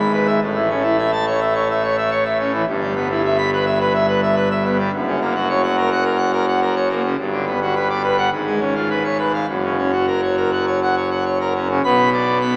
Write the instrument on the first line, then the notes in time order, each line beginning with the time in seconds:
pipe organ
Already playing: G#1 G#2
0.00 B5
0.14 B4
0.27 E5
0.41 A1 A2
0.56 E3
0.69 C#4
0.83 E4
0.98 E5
1.12 A5
1.27 C#5
1.41 E5
1.55 C#5
1.70 E5
1.84 C#5
1.98 E5
2.11 C#5
2.26 E5
2.40 C#4
2.53 E3
2.67 G1 G2
2.82 G3
2.96 B3
3.10 E4
3.25 E5
3.38 B5
3.53 B4
3.66 E5
3.81 B4
3.94 E5
4.08 B4
4.23 E5
4.36 B4
4.51 E5
4.65 B3
4.79 G3
4.93 F#1 F#2
5.07 C#3
5.21 A#3
5.36 F#4
5.49 C#5
5.63 F#5
5.77 A#4
5.91 F#5
6.05 A#4
6.18 F#5
6.32 A#4
6.48 F#5
6.62 A#4
6.76 C#5
6.90 A#3
7.05 C#3
7.18 G1 G2
7.32 D3
7.47 B3
7.62 F#4
7.76 B4
7.89 D5
8.03 B4
8.17 F#5
8.32 G#1 G#2
8.47 G#3
8.60 C#4
8.75 F4
8.90 B4
9.04 C#5
9.18 B4
9.34 F5
9.47 F#1 F#2
9.64 C#3
9.78 C#4
9.92 F#4
10.07 A#4
10.22 C#5
10.37 A#4
10.52 F#5
10.67 C#5
10.82 F#5
10.97 C#5
11.11 F#5
11.25 C#5
11.40 A#4
11.55 C#4
11.70 C#3
11.84 B1 B2 B5
12.13 D5
12.41 B3 B5